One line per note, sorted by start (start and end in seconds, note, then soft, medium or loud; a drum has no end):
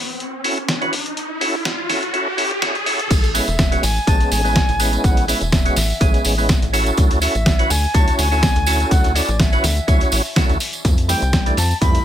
0.00 riser medium
0.20 closed hi-hat medium
0.44 0.58 C#4 medium
0.44 0.59 E4 medium
0.44 0.59 F#4 medium
0.44 0.59 A4 medium
0.44 open hi-hat loud
0.58 closed hi-hat soft
0.69 snare loud
0.69 closed hi-hat medium
0.81 0.94 C#4 medium
0.81 0.94 E4 medium
0.81 0.94 F#4 medium
0.81 0.94 B4 medium
0.81 closed hi-hat medium
0.93 open hi-hat loud
1.06 closed hi-hat medium
1.17 closed hi-hat medium
1.41 1.55 C#4 medium
1.41 1.55 E4 medium
1.41 1.56 F#4 medium
1.41 1.56 A4 medium
1.41 open hi-hat loud
1.65 snare loud
1.65 closed hi-hat medium
1.89 2.04 C#4 medium
1.89 2.04 E4 medium
1.89 2.04 F#4 medium
1.89 2.04 A4 medium
1.89 snare medium
1.89 open hi-hat loud
2.03 closed hi-hat soft
2.13 2.28 C#4 medium
2.13 2.28 E4 medium
2.13 2.28 F#4 medium
2.13 2.28 A4 medium
2.13 closed hi-hat medium
2.37 2.52 C#4 medium
2.37 2.52 E4 medium
2.37 2.52 F#4 medium
2.37 2.53 A4 medium
2.37 open hi-hat loud
2.51 closed hi-hat soft
2.62 2.76 C#4 medium
2.62 2.76 E4 medium
2.62 2.77 F#4 medium
2.62 2.77 A4 loud
2.62 snare loud
2.62 closed hi-hat medium
2.75 closed hi-hat medium
2.86 3.00 C#4 medium
2.86 3.01 E4 medium
2.86 3.01 F#4 medium
2.86 3.01 A4 medium
2.86 open hi-hat loud
3.00 closed hi-hat medium
3.11 3.40 A1 medium
3.11 kick loud
3.11 closed hi-hat medium
3.11 tambourine medium
3.11 crash loud
3.24 closed hi-hat medium
3.24 tambourine soft
3.34 3.49 G#3 medium
3.34 3.49 B3 medium
3.34 3.49 C#4 medium
3.34 3.49 E4 medium
3.34 3.85 E5 loud
3.34 open hi-hat loud
3.34 tambourine medium
3.48 3.77 E1 medium
3.48 closed hi-hat soft
3.48 tambourine soft
3.59 kick loud
3.59 snare loud
3.59 closed hi-hat medium
3.59 tambourine soft
3.71 3.84 G#3 medium
3.71 3.84 B3 medium
3.71 3.85 C#4 medium
3.71 3.85 F#4 loud
3.71 closed hi-hat medium
3.71 tambourine soft
3.83 3.99 A1 loud
3.83 4.09 G#5 loud
3.83 open hi-hat loud
3.83 tambourine loud
3.96 tambourine soft
4.07 4.23 A1 loud
4.07 4.41 G#3 medium
4.07 4.41 B3 medium
4.07 4.42 C#4 medium
4.07 4.42 G#4 medium
4.07 4.33 A5 loud
4.07 kick loud
4.07 closed hi-hat medium
4.07 tambourine medium
4.21 closed hi-hat medium
4.21 tambourine soft
4.32 4.61 A1 loud
4.32 4.98 G#5 loud
4.32 open hi-hat loud
4.32 tambourine loud
4.44 4.57 G#3 medium
4.44 4.57 B3 medium
4.44 4.57 C#4 medium
4.44 4.57 E4 loud
4.44 tambourine soft
4.56 kick loud
4.56 snare loud
4.56 closed hi-hat medium
4.56 tambourine soft
4.69 4.98 A1 loud
4.69 closed hi-hat medium
4.69 tambourine soft
4.79 5.25 G#3 medium
4.79 5.26 B3 medium
4.79 5.26 C#4 medium
4.79 5.26 E4 loud
4.79 open hi-hat loud
4.79 tambourine medium
4.93 closed hi-hat soft
4.93 tambourine soft
4.99 5.06 G#5 medium
5.04 5.34 A1 medium
5.04 5.28 F#5 loud
5.04 kick loud
5.04 closed hi-hat medium
5.04 tambourine medium
5.17 closed hi-hat soft
5.17 tambourine soft
5.28 5.42 G#3 medium
5.28 5.43 B3 medium
5.28 5.43 C#4 medium
5.28 5.43 E4 medium
5.28 5.51 E5 medium
5.28 open hi-hat loud
5.28 tambourine loud
5.41 5.70 E1 medium
5.41 closed hi-hat soft
5.41 tambourine soft
5.52 6.69 E5 medium
5.52 kick loud
5.52 snare loud
5.52 closed hi-hat medium
5.52 tambourine soft
5.65 5.78 G#3 medium
5.65 5.78 B3 medium
5.65 5.78 C#4 medium
5.65 5.78 F#4 loud
5.65 closed hi-hat medium
5.65 tambourine soft
5.76 5.93 A1 loud
5.76 snare medium
5.76 open hi-hat loud
5.76 tambourine loud
5.90 tambourine soft
6.00 6.17 A1 loud
6.00 6.35 G#3 medium
6.00 6.35 B3 medium
6.00 6.35 C#4 medium
6.00 6.35 G#4 medium
6.00 kick loud
6.00 closed hi-hat medium
6.00 tambourine soft
6.14 closed hi-hat medium
6.14 tambourine soft
6.25 6.55 A1 loud
6.25 open hi-hat loud
6.25 tambourine loud
6.38 6.50 G#3 medium
6.38 6.51 B3 medium
6.38 6.51 C#4 medium
6.38 6.51 E4 loud
6.38 tambourine soft
6.49 kick loud
6.49 snare loud
6.49 closed hi-hat medium
6.49 tambourine medium
6.62 6.91 A1 loud
6.62 closed hi-hat medium
6.62 tambourine soft
6.73 7.19 C#4 medium
6.73 7.19 E4 medium
6.73 7.19 F#4 medium
6.73 7.19 A4 loud
6.73 open hi-hat loud
6.73 tambourine medium
6.86 closed hi-hat soft
6.86 tambourine soft
6.97 7.27 D2 loud
6.97 kick loud
6.97 closed hi-hat medium
6.97 tambourine medium
7.10 closed hi-hat medium
7.10 tambourine soft
7.21 7.36 C#4 medium
7.21 7.36 E4 medium
7.21 7.36 F#4 medium
7.21 7.36 A4 medium
7.21 7.72 E5 loud
7.21 open hi-hat loud
7.21 tambourine medium
7.35 7.64 A1 medium
7.35 closed hi-hat soft
7.35 tambourine soft
7.46 kick loud
7.46 snare loud
7.46 closed hi-hat medium
7.46 tambourine medium
7.59 7.71 C#4 medium
7.59 7.72 E4 medium
7.59 7.72 F#4 medium
7.59 7.72 B4 loud
7.59 closed hi-hat medium
7.59 tambourine soft
7.70 7.86 D2 loud
7.70 7.96 G#5 loud
7.70 open hi-hat loud
7.70 tambourine loud
7.84 tambourine soft
7.94 8.11 D2 loud
7.94 8.28 C#4 medium
7.94 8.29 E4 medium
7.94 8.29 F#4 medium
7.94 8.29 C#5 medium
7.94 8.18 A5 loud
7.94 kick loud
7.94 closed hi-hat medium
7.94 tambourine soft
8.08 closed hi-hat medium
8.08 tambourine soft
8.19 8.48 D2 loud
8.19 8.93 G#5 loud
8.19 open hi-hat loud
8.19 tambourine medium
8.31 8.44 C#4 medium
8.31 8.44 E4 medium
8.31 8.44 F#4 medium
8.31 8.45 A4 loud
8.31 tambourine soft
8.43 kick loud
8.43 snare loud
8.43 closed hi-hat medium
8.43 tambourine medium
8.55 8.85 D2 medium
8.55 closed hi-hat medium
8.55 tambourine soft
8.66 9.13 C#4 loud
8.66 9.13 E4 medium
8.66 9.13 F#4 medium
8.66 9.13 A4 loud
8.66 open hi-hat loud
8.66 tambourine loud
8.80 closed hi-hat soft
8.80 tambourine soft
8.91 9.21 D2 loud
8.91 9.17 F#5 loud
8.91 kick loud
8.91 closed hi-hat medium
8.91 tambourine medium
9.04 closed hi-hat soft
9.04 tambourine soft
9.15 9.29 C#4 medium
9.15 9.30 E4 medium
9.15 9.30 F#4 medium
9.15 9.30 A4 medium
9.15 9.41 D5 loud
9.15 open hi-hat loud
9.15 tambourine medium
9.29 9.57 A1 medium
9.29 closed hi-hat soft
9.29 tambourine soft
9.40 10.61 E5 loud
9.40 kick loud
9.40 snare loud
9.40 closed hi-hat medium
9.40 tambourine medium
9.52 9.65 C#4 medium
9.52 9.65 E4 medium
9.52 9.65 F#4 medium
9.52 9.66 B4 loud
9.52 closed hi-hat medium
9.52 tambourine soft
9.64 9.80 D2 loud
9.64 snare medium
9.64 open hi-hat loud
9.64 tambourine medium
9.77 closed hi-hat soft
9.77 tambourine soft
9.88 10.04 D2 medium
9.88 10.22 C#4 medium
9.88 10.22 E4 medium
9.88 10.22 F#4 medium
9.88 10.22 C#5 medium
9.88 kick loud
9.88 closed hi-hat medium
9.88 tambourine medium
10.00 closed hi-hat medium
10.00 tambourine soft
10.12 10.20 A1 loud
10.12 open hi-hat loud
10.12 tambourine loud
10.25 tambourine soft
10.36 10.58 C#4 medium
10.36 10.58 E4 medium
10.36 10.58 F#4 medium
10.36 10.58 A4 medium
10.36 kick loud
10.36 snare loud
10.36 closed hi-hat medium
10.36 tambourine medium
10.49 10.57 D2 medium
10.49 closed hi-hat medium
10.49 tambourine soft
10.60 open hi-hat loud
10.60 tambourine loud
10.73 closed hi-hat soft
10.73 tambourine soft
10.85 11.14 F2 loud
10.85 kick loud
10.85 closed hi-hat medium
10.85 tambourine medium
10.97 closed hi-hat soft
10.97 tambourine soft
11.08 11.23 E3 medium
11.08 11.23 G3 medium
11.08 11.23 A3 medium
11.08 11.24 C4 medium
11.08 11.54 G5 loud
11.08 open hi-hat loud
11.08 tambourine loud
11.22 11.51 C2 medium
11.22 closed hi-hat soft
11.22 tambourine soft
11.33 kick loud
11.33 snare loud
11.33 closed hi-hat medium
11.33 tambourine medium
11.46 11.59 E3 medium
11.46 11.59 G3 medium
11.46 11.59 A3 medium
11.46 11.59 D4 loud
11.46 closed hi-hat medium
11.46 tambourine soft
11.57 11.73 F2 loud
11.57 11.80 A5 loud
11.57 open hi-hat loud
11.57 tambourine loud
11.71 tambourine soft
11.81 11.98 F2 loud
11.81 12.05 E3 medium
11.81 12.05 G3 medium
11.81 12.05 A3 medium
11.81 12.05 E4 medium
11.81 12.05 B5 loud
11.81 kick loud
11.81 closed hi-hat medium
11.81 tambourine medium
11.95 closed hi-hat medium
11.95 tambourine soft